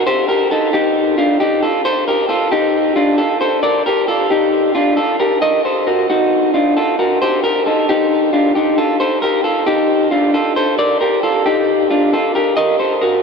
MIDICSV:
0, 0, Header, 1, 2, 480
1, 0, Start_track
1, 0, Tempo, 446761
1, 74, Time_signature, 4, 2, 24, 8
1, 14210, End_track
2, 0, Start_track
2, 0, Title_t, "Clean electric guitar"
2, 0, Program_c, 0, 27
2, 71, Note_on_c, 0, 72, 102
2, 77, Note_on_c, 0, 67, 80
2, 302, Note_off_c, 0, 67, 0
2, 302, Note_off_c, 0, 72, 0
2, 306, Note_on_c, 0, 70, 78
2, 315, Note_on_c, 0, 67, 65
2, 545, Note_off_c, 0, 70, 0
2, 549, Note_on_c, 0, 69, 73
2, 552, Note_off_c, 0, 67, 0
2, 556, Note_on_c, 0, 63, 57
2, 782, Note_off_c, 0, 63, 0
2, 786, Note_on_c, 0, 67, 81
2, 790, Note_off_c, 0, 69, 0
2, 795, Note_on_c, 0, 63, 69
2, 1238, Note_off_c, 0, 67, 0
2, 1243, Note_off_c, 0, 63, 0
2, 1267, Note_on_c, 0, 65, 82
2, 1275, Note_on_c, 0, 62, 61
2, 1501, Note_off_c, 0, 65, 0
2, 1506, Note_on_c, 0, 67, 83
2, 1511, Note_off_c, 0, 62, 0
2, 1517, Note_on_c, 0, 63, 59
2, 1747, Note_off_c, 0, 67, 0
2, 1747, Note_on_c, 0, 69, 79
2, 1752, Note_off_c, 0, 63, 0
2, 1758, Note_on_c, 0, 65, 60
2, 1981, Note_off_c, 0, 69, 0
2, 1988, Note_on_c, 0, 72, 105
2, 1990, Note_off_c, 0, 65, 0
2, 1994, Note_on_c, 0, 69, 76
2, 2227, Note_off_c, 0, 72, 0
2, 2230, Note_off_c, 0, 69, 0
2, 2232, Note_on_c, 0, 70, 83
2, 2241, Note_on_c, 0, 67, 65
2, 2454, Note_off_c, 0, 70, 0
2, 2458, Note_on_c, 0, 69, 76
2, 2462, Note_off_c, 0, 67, 0
2, 2467, Note_on_c, 0, 65, 58
2, 2698, Note_off_c, 0, 65, 0
2, 2702, Note_off_c, 0, 69, 0
2, 2703, Note_on_c, 0, 67, 81
2, 2711, Note_on_c, 0, 63, 62
2, 3154, Note_off_c, 0, 67, 0
2, 3159, Note_off_c, 0, 63, 0
2, 3179, Note_on_c, 0, 65, 71
2, 3185, Note_on_c, 0, 62, 59
2, 3411, Note_off_c, 0, 65, 0
2, 3416, Note_on_c, 0, 69, 71
2, 3424, Note_on_c, 0, 65, 53
2, 3425, Note_off_c, 0, 62, 0
2, 3656, Note_off_c, 0, 69, 0
2, 3661, Note_on_c, 0, 72, 79
2, 3664, Note_off_c, 0, 65, 0
2, 3669, Note_on_c, 0, 69, 60
2, 3894, Note_off_c, 0, 72, 0
2, 3899, Note_on_c, 0, 74, 89
2, 3903, Note_off_c, 0, 69, 0
2, 3907, Note_on_c, 0, 70, 73
2, 4135, Note_off_c, 0, 70, 0
2, 4141, Note_off_c, 0, 74, 0
2, 4148, Note_on_c, 0, 70, 71
2, 4157, Note_on_c, 0, 67, 57
2, 4381, Note_off_c, 0, 70, 0
2, 4385, Note_on_c, 0, 69, 69
2, 4390, Note_off_c, 0, 67, 0
2, 4394, Note_on_c, 0, 65, 51
2, 4620, Note_off_c, 0, 65, 0
2, 4624, Note_off_c, 0, 69, 0
2, 4624, Note_on_c, 0, 67, 75
2, 4633, Note_on_c, 0, 63, 57
2, 5075, Note_off_c, 0, 67, 0
2, 5080, Note_off_c, 0, 63, 0
2, 5101, Note_on_c, 0, 65, 69
2, 5109, Note_on_c, 0, 62, 54
2, 5335, Note_off_c, 0, 65, 0
2, 5338, Note_on_c, 0, 69, 63
2, 5346, Note_off_c, 0, 62, 0
2, 5348, Note_on_c, 0, 65, 54
2, 5579, Note_off_c, 0, 69, 0
2, 5583, Note_on_c, 0, 70, 69
2, 5585, Note_off_c, 0, 65, 0
2, 5590, Note_on_c, 0, 67, 53
2, 5816, Note_off_c, 0, 70, 0
2, 5821, Note_on_c, 0, 75, 95
2, 5826, Note_off_c, 0, 67, 0
2, 5830, Note_on_c, 0, 70, 73
2, 6062, Note_off_c, 0, 75, 0
2, 6067, Note_off_c, 0, 70, 0
2, 6071, Note_on_c, 0, 72, 74
2, 6079, Note_on_c, 0, 69, 55
2, 6299, Note_off_c, 0, 69, 0
2, 6304, Note_on_c, 0, 70, 62
2, 6308, Note_off_c, 0, 72, 0
2, 6312, Note_on_c, 0, 66, 53
2, 6537, Note_off_c, 0, 66, 0
2, 6544, Note_off_c, 0, 70, 0
2, 6550, Note_on_c, 0, 66, 73
2, 6556, Note_on_c, 0, 63, 61
2, 6999, Note_off_c, 0, 66, 0
2, 7002, Note_off_c, 0, 63, 0
2, 7028, Note_on_c, 0, 65, 68
2, 7035, Note_on_c, 0, 62, 53
2, 7266, Note_off_c, 0, 65, 0
2, 7270, Note_off_c, 0, 62, 0
2, 7270, Note_on_c, 0, 69, 73
2, 7280, Note_on_c, 0, 65, 52
2, 7506, Note_off_c, 0, 69, 0
2, 7511, Note_off_c, 0, 65, 0
2, 7511, Note_on_c, 0, 70, 68
2, 7516, Note_on_c, 0, 66, 57
2, 7748, Note_off_c, 0, 70, 0
2, 7751, Note_off_c, 0, 66, 0
2, 7754, Note_on_c, 0, 72, 89
2, 7763, Note_on_c, 0, 67, 71
2, 7986, Note_off_c, 0, 67, 0
2, 7986, Note_off_c, 0, 72, 0
2, 7990, Note_on_c, 0, 70, 78
2, 7999, Note_on_c, 0, 67, 55
2, 8228, Note_off_c, 0, 70, 0
2, 8232, Note_off_c, 0, 67, 0
2, 8232, Note_on_c, 0, 69, 65
2, 8242, Note_on_c, 0, 63, 51
2, 8469, Note_off_c, 0, 69, 0
2, 8473, Note_off_c, 0, 63, 0
2, 8477, Note_on_c, 0, 67, 75
2, 8485, Note_on_c, 0, 63, 64
2, 8924, Note_off_c, 0, 67, 0
2, 8928, Note_off_c, 0, 63, 0
2, 8949, Note_on_c, 0, 65, 71
2, 8956, Note_on_c, 0, 62, 54
2, 9185, Note_off_c, 0, 65, 0
2, 9189, Note_on_c, 0, 67, 66
2, 9192, Note_off_c, 0, 62, 0
2, 9199, Note_on_c, 0, 63, 53
2, 9428, Note_off_c, 0, 67, 0
2, 9433, Note_off_c, 0, 63, 0
2, 9433, Note_on_c, 0, 69, 70
2, 9440, Note_on_c, 0, 65, 52
2, 9665, Note_off_c, 0, 69, 0
2, 9669, Note_on_c, 0, 72, 91
2, 9674, Note_off_c, 0, 65, 0
2, 9678, Note_on_c, 0, 69, 75
2, 9902, Note_off_c, 0, 72, 0
2, 9906, Note_on_c, 0, 70, 75
2, 9913, Note_off_c, 0, 69, 0
2, 9918, Note_on_c, 0, 67, 58
2, 10139, Note_off_c, 0, 70, 0
2, 10144, Note_on_c, 0, 69, 65
2, 10146, Note_off_c, 0, 67, 0
2, 10151, Note_on_c, 0, 65, 49
2, 10381, Note_off_c, 0, 65, 0
2, 10385, Note_on_c, 0, 67, 73
2, 10386, Note_off_c, 0, 69, 0
2, 10394, Note_on_c, 0, 63, 59
2, 10838, Note_off_c, 0, 67, 0
2, 10843, Note_off_c, 0, 63, 0
2, 10866, Note_on_c, 0, 65, 66
2, 10872, Note_on_c, 0, 62, 51
2, 11099, Note_off_c, 0, 65, 0
2, 11109, Note_on_c, 0, 65, 53
2, 11111, Note_off_c, 0, 62, 0
2, 11111, Note_on_c, 0, 69, 65
2, 11345, Note_off_c, 0, 69, 0
2, 11350, Note_on_c, 0, 72, 74
2, 11351, Note_off_c, 0, 65, 0
2, 11358, Note_on_c, 0, 69, 54
2, 11584, Note_off_c, 0, 72, 0
2, 11588, Note_on_c, 0, 74, 92
2, 11590, Note_off_c, 0, 69, 0
2, 11594, Note_on_c, 0, 70, 72
2, 11814, Note_off_c, 0, 70, 0
2, 11822, Note_off_c, 0, 74, 0
2, 11827, Note_on_c, 0, 70, 75
2, 11835, Note_on_c, 0, 67, 59
2, 12063, Note_off_c, 0, 70, 0
2, 12067, Note_on_c, 0, 69, 66
2, 12069, Note_off_c, 0, 67, 0
2, 12073, Note_on_c, 0, 65, 51
2, 12305, Note_off_c, 0, 65, 0
2, 12309, Note_off_c, 0, 69, 0
2, 12310, Note_on_c, 0, 67, 76
2, 12320, Note_on_c, 0, 63, 56
2, 12763, Note_off_c, 0, 67, 0
2, 12768, Note_off_c, 0, 63, 0
2, 12791, Note_on_c, 0, 65, 69
2, 12796, Note_on_c, 0, 62, 53
2, 13027, Note_off_c, 0, 65, 0
2, 13035, Note_off_c, 0, 62, 0
2, 13036, Note_on_c, 0, 69, 71
2, 13040, Note_on_c, 0, 65, 54
2, 13265, Note_off_c, 0, 69, 0
2, 13269, Note_on_c, 0, 70, 67
2, 13272, Note_off_c, 0, 65, 0
2, 13276, Note_on_c, 0, 67, 55
2, 13497, Note_off_c, 0, 70, 0
2, 13501, Note_on_c, 0, 75, 94
2, 13507, Note_off_c, 0, 67, 0
2, 13512, Note_on_c, 0, 70, 75
2, 13742, Note_off_c, 0, 75, 0
2, 13746, Note_on_c, 0, 72, 75
2, 13747, Note_off_c, 0, 70, 0
2, 13751, Note_on_c, 0, 69, 59
2, 13979, Note_off_c, 0, 69, 0
2, 13984, Note_on_c, 0, 70, 70
2, 13991, Note_off_c, 0, 72, 0
2, 13995, Note_on_c, 0, 66, 49
2, 14206, Note_off_c, 0, 66, 0
2, 14210, Note_off_c, 0, 70, 0
2, 14210, End_track
0, 0, End_of_file